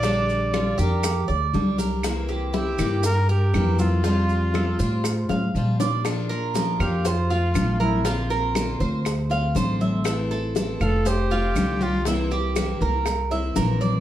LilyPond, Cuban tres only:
\new Staff \with { instrumentName = "Cuban tres" } { \time 4/4 \key f \major \tempo 4 = 120 d'4 f'8 g'4 d''4 bes'8~ | bes'8 g'8 e'8 g'4 bes'4 a'8 | f'4 a'8 c''4 f''4 d''8 | r8 bes'4 f''8 c''8 f'4 bes'8 |
f'8 bes'4 c''4 f''8 c''8 e''8~ | e''8 a'4 f''8 c''8 f'4 g'8 | e'8 g'4 bes'4 e''8 bes'8 d''8 | }